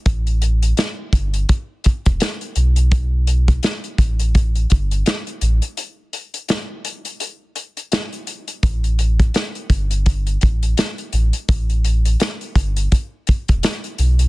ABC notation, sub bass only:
X:1
M:4/4
L:1/16
Q:"Swing 16ths" 1/4=84
K:G
V:1 name="Sub bass" clef=bass
A,,,4 z2 G,,,2 z3 E,,, z2 B,,,2- | B,,,4 z2 A,,,4 G,,,2 z2 A,,, z | z16 | A,,,4 z2 G,,,4 A,,,2 z2 A,,, z |
A,,,4 z2 G,,,2 z3 E,,, z2 B,,,2 |]